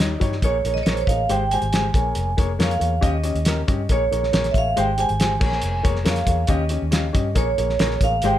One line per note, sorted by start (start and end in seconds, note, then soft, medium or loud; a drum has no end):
0.00 0.15 D#2 medium
0.00 0.11 G3 medium
0.00 0.11 D#4 medium
0.00 0.11 C#5 medium
0.00 0.45 D#5 medium
0.00 snare loud
0.20 0.39 G2 medium
0.20 0.32 G3 medium
0.20 0.32 D#4 medium
0.20 0.33 C#5 loud
0.20 kick loud
0.20 closed hi-hat medium
0.32 snare soft
0.42 0.60 A#1 loud
0.42 0.55 A#3 medium
0.42 0.55 G#4 medium
0.42 0.73 C#5 medium
0.42 0.55 C#5 loud
0.42 kick medium
0.42 closed hi-hat medium
0.65 0.82 A#1 medium
0.65 0.77 A#3 medium
0.65 0.77 G#4 medium
0.65 0.77 C#5 medium
0.65 closed hi-hat medium
0.74 0.81 D#5 medium
0.74 snare soft
0.83 1.04 A#1 loud
0.83 0.98 A#3 medium
0.83 0.98 G#4 medium
0.83 0.91 C#5 medium
0.83 snare loud
0.83 closed hi-hat medium
0.88 0.99 C#5 loud
0.92 1.00 C5 medium
0.97 1.09 C#5 medium
0.97 closed hi-hat soft
1.07 1.25 A1 medium
1.07 1.20 A#3 medium
1.07 1.20 G#4 medium
1.07 1.20 D#5 medium
1.07 1.28 F5 loud
1.07 kick medium
1.07 closed hi-hat medium
1.29 1.56 G#1 loud
1.29 1.41 G#3 medium
1.29 1.41 G4 medium
1.29 1.42 C5 loud
1.29 1.52 G5 medium
1.29 closed hi-hat medium
1.51 1.64 G#3 medium
1.51 1.64 G4 medium
1.51 1.64 C5 medium
1.51 2.34 G#5 loud
1.51 closed hi-hat medium
1.62 1.89 G#1 medium
1.62 closed hi-hat soft
1.73 1.85 G#3 medium
1.73 1.85 G4 medium
1.73 1.85 C5 medium
1.73 snare loud
1.73 closed hi-hat loud
1.94 2.12 A#1 loud
1.94 2.29 A#3 medium
1.94 2.29 G#4 medium
1.94 2.29 C#5 medium
1.94 kick loud
1.94 closed hi-hat medium
2.15 2.34 F1 loud
2.15 closed hi-hat medium
2.37 2.56 F1 medium
2.37 2.49 A#3 medium
2.37 2.50 G#4 medium
2.37 2.50 C#5 medium
2.37 kick loud
2.37 closed hi-hat medium
2.59 2.77 F2 loud
2.59 2.71 A#3 medium
2.59 2.71 G#4 medium
2.59 2.72 C#5 loud
2.59 snare loud
2.59 closed hi-hat medium
2.63 3.06 F5 medium
2.71 closed hi-hat soft
2.79 2.99 E2 medium
2.79 2.92 A#3 medium
2.79 2.92 G#4 medium
2.79 2.93 C#5 medium
2.79 closed hi-hat medium
3.01 3.30 D#2 loud
3.01 3.14 C#4 loud
3.01 3.14 G4 loud
3.01 3.15 D#5 loud
3.01 kick loud
3.01 closed hi-hat medium
3.06 3.94 D#5 medium
3.23 3.36 C#4 medium
3.23 3.36 G4 medium
3.23 3.37 D#5 medium
3.23 closed hi-hat medium
3.35 3.62 D#2 medium
3.35 closed hi-hat soft
3.45 3.58 C#4 medium
3.45 3.59 G4 medium
3.45 3.59 A#4 medium
3.45 snare loud
3.45 closed hi-hat loud
3.68 3.86 G2 medium
3.68 3.80 C#4 medium
3.68 3.80 G4 medium
3.68 3.80 D#5 medium
3.68 kick loud
3.68 closed hi-hat medium
3.89 4.08 A#1 loud
3.89 4.02 A#3 medium
3.89 4.02 G#4 medium
3.89 4.03 C#5 loud
3.89 4.52 C#5 medium
3.89 kick medium
3.89 closed hi-hat medium
4.11 4.30 A#1 medium
4.11 4.23 A#3 medium
4.11 4.24 G#4 medium
4.11 4.24 C#5 medium
4.11 closed hi-hat medium
4.23 snare soft
4.33 4.52 A#1 medium
4.33 4.45 A#3 medium
4.33 4.45 G#4 medium
4.33 4.46 C#5 loud
4.33 snare loud
4.33 closed hi-hat medium
4.44 snare soft
4.44 closed hi-hat soft
4.51 4.73 A1 medium
4.51 4.56 E5 medium
4.51 kick medium
4.51 closed hi-hat medium
4.55 4.67 A#3 medium
4.55 4.68 G#4 medium
4.55 4.68 C#5 medium
4.55 4.79 F5 loud
4.76 5.04 G#1 loud
4.76 4.88 G#3 loud
4.76 4.89 G4 medium
4.76 4.89 C5 loud
4.76 5.00 G5 loud
4.76 closed hi-hat medium
4.98 5.10 G#3 medium
4.98 5.10 G4 medium
4.98 5.11 C5 medium
4.98 5.82 G#5 loud
4.98 closed hi-hat medium
5.09 5.37 G#1 medium
5.09 closed hi-hat soft
5.20 5.32 G#3 medium
5.20 5.32 G4 medium
5.20 5.32 C5 medium
5.20 snare loud
5.20 closed hi-hat loud
5.40 5.59 A#1 loud
5.40 5.76 A#3 medium
5.40 5.76 G#4 medium
5.40 5.76 C#5 medium
5.40 kick loud
5.40 crash medium
5.52 snare soft
5.62 5.81 F1 medium
5.62 closed hi-hat medium
5.83 6.03 F1 medium
5.83 5.96 A#3 medium
5.83 5.97 G#4 medium
5.83 5.97 C#5 loud
5.83 kick loud
5.83 closed hi-hat medium
5.96 snare soft
6.05 6.25 F2 medium
6.05 6.18 A#3 medium
6.05 6.18 G#4 medium
6.05 6.19 C#5 medium
6.05 snare loud
6.05 closed hi-hat medium
6.09 6.48 F5 medium
6.16 snare soft
6.16 closed hi-hat soft
6.26 6.45 E2 medium
6.26 6.40 A#3 medium
6.26 6.40 G#4 medium
6.26 6.40 C#5 medium
6.26 kick medium
6.26 closed hi-hat medium
6.47 6.77 D#2 loud
6.47 6.61 C#4 loud
6.47 6.62 G4 loud
6.47 6.62 D#5 loud
6.47 kick loud
6.47 closed hi-hat medium
6.52 7.40 D#5 medium
6.69 6.83 C#4 medium
6.69 6.83 G4 medium
6.69 6.83 D#5 medium
6.69 closed hi-hat medium
6.82 7.09 D#2 medium
6.91 7.04 C#4 medium
6.91 7.05 G4 medium
6.91 7.05 F5 medium
6.91 snare loud
6.91 closed hi-hat loud
7.13 7.33 G2 medium
7.13 7.26 C#4 medium
7.13 7.26 G4 medium
7.13 7.27 D#5 medium
7.13 kick loud
7.13 closed hi-hat medium
7.35 7.54 A#1 loud
7.35 7.48 A#3 medium
7.35 7.48 G#4 medium
7.35 7.49 C#5 medium
7.35 8.05 C#5 medium
7.35 kick medium
7.35 closed hi-hat medium
7.58 7.76 A#1 medium
7.58 7.70 A#3 medium
7.58 7.70 G#4 medium
7.58 7.71 C#5 medium
7.58 closed hi-hat medium
7.69 snare soft
7.79 7.98 A#1 loud
7.79 7.92 A#3 medium
7.79 7.92 G#4 medium
7.79 7.93 C#5 loud
7.79 snare loud
7.79 closed hi-hat medium
7.91 snare soft
8.01 8.20 A1 medium
8.01 8.14 A#3 medium
8.01 8.14 G#4 medium
8.01 8.15 C#5 medium
8.01 8.25 F5 loud
8.01 kick medium
8.01 closed hi-hat medium
8.22 8.39 G#1 loud
8.22 8.36 G#3 loud
8.22 8.36 G4 loud
8.22 8.37 C5 loud
8.22 8.35 G5 loud
8.22 closed hi-hat medium